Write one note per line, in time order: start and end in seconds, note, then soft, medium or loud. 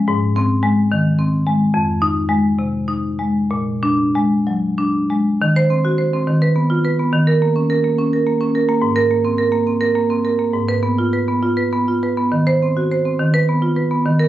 0.08 1.69 G#2 loud
0.36 0.80 C4 loud
0.63 1.08 G#3 medium
0.92 1.36 D#3 medium
1.19 1.63 C4 medium
1.47 1.74 G#3 medium
1.74 3.48 F2 loud
2.02 2.47 D#4 loud
2.29 2.77 G#3 medium
2.59 3.07 C3 medium
2.88 3.38 D#4 medium
3.19 3.51 G#3 medium
3.51 5.37 A#2 medium
3.83 4.34 D4 medium
4.15 4.66 G#3 medium
4.47 4.98 F#3 medium
4.78 5.29 D4 medium
5.10 5.41 G#3 medium
5.42 6.25 D#3 medium
5.56 5.79 C5 loud
5.70 5.93 C4 medium
5.85 6.08 F#4 medium
5.98 6.22 C5 medium
6.13 6.28 C4 medium
6.27 7.11 D#3 medium
6.42 6.65 B4 medium
6.56 6.79 B3 medium
6.70 6.94 F4 medium
6.85 7.08 B4 medium
6.99 7.14 B3 medium
7.13 8.78 D#3 medium
7.27 7.51 A#4 loud
7.42 7.65 A#3 medium
7.56 7.79 C#4 medium
7.70 7.93 A#4 medium
7.84 8.07 A#3 medium
7.98 8.21 C#4 medium
8.13 8.35 A#4 medium
8.26 8.49 A#3 medium
8.41 8.63 C#4 medium
8.55 8.77 A#4 medium
8.69 8.83 A#3 medium
8.82 10.49 G#2 medium
8.96 9.19 A#4 loud
9.11 9.33 A#3 medium
9.25 9.47 C4 medium
9.38 9.61 A#4 medium
9.52 9.75 A#3 medium
9.67 9.89 C4 medium
9.81 10.03 A#4 medium
9.95 10.18 A#3 medium
10.10 10.33 C4 medium
10.25 10.48 A#4 medium
10.39 10.54 A#3 medium
10.54 12.27 G#2 medium
10.69 10.92 B4 medium
10.83 11.07 B3 medium
10.98 11.22 F4 medium
11.13 11.37 B4 medium
11.28 11.52 B3 medium
11.43 11.66 F4 medium
11.57 11.81 B4 medium
11.73 11.96 B3 medium
11.88 12.11 F4 medium
12.03 12.26 B4 medium
12.17 12.32 B3 medium
12.32 13.17 D#3 medium
12.47 12.70 C5 medium
12.62 12.85 C4 medium
12.77 12.99 F#4 medium
12.92 13.14 C5 medium
13.05 13.19 C4 medium
13.20 14.03 D#3 medium
13.34 13.57 B4 medium
13.49 13.71 B3 medium
13.62 13.85 F4 medium
13.76 13.99 B4 medium
13.91 14.05 B3 medium
14.06 14.28 D#3 medium
14.20 14.28 A#4 medium